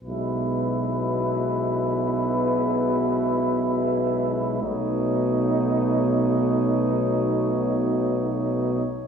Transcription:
0.02 tuba B1, trombone B2, euphonium G#3, flugelhorn E4, cornet B4
4.62 tuba B1, trombone B2, euphonium A3, flugelhorn D#4, cornet C#5

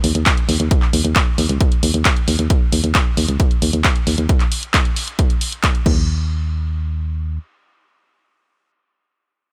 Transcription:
0.04 fm bass D#2, open hi-hat
0.15 fm bass D#2, closed hi-hat
0.26 kick, clap, closed hi-hat
0.37 closed hi-hat
0.49 fm bass D#2, open hi-hat
0.60 fm bass D#2, closed hi-hat
0.71 kick, closed hi-hat
0.82 clap
0.93 fm bass D#2, open hi-hat
1.05 fm bass D#2, closed hi-hat
1.16 kick, clap, closed hi-hat
1.38 fm bass D#2, open hi-hat
1.49 fm bass C#2, closed hi-hat
1.61 kick, closed hi-hat
1.72 closed hi-hat
1.83 fm bass D#2, open hi-hat
1.94 fm bass D#2, closed hi-hat
2.05 kick, clap, closed hi-hat
2.16 closed hi-hat
2.28 fm bass D#2, open hi-hat
2.39 fm bass D#2, closed hi-hat
2.50 kick, closed hi-hat
2.72 fm bass D#2, open hi-hat
2.84 fm bass D#2, closed hi-hat
2.95 kick, clap, closed hi-hat
3.17 fm bass D#2, open hi-hat
3.28 fm bass C#2, closed hi-hat
3.40 kick, closed hi-hat
3.51 closed hi-hat
3.62 fm bass D#2, open hi-hat
3.73 fm bass D#2, closed hi-hat
3.84 kick, clap, closed hi-hat
3.96 closed hi-hat
4.07 fm bass D#2, open hi-hat
4.18 fm bass D#2, closed hi-hat
4.29 kick, closed hi-hat
4.40 clap, closed hi-hat
4.52 open hi-hat
4.63 closed hi-hat
4.74 kick, clap, closed hi-hat
4.85 closed hi-hat
4.96 open hi-hat
5.08 closed hi-hat
5.19 kick, closed hi-hat
5.30 closed hi-hat
5.41 open hi-hat
5.52 closed hi-hat
5.64 kick, clap, closed hi-hat
5.75 closed hi-hat
5.86 fm bass D#2, kick, crash

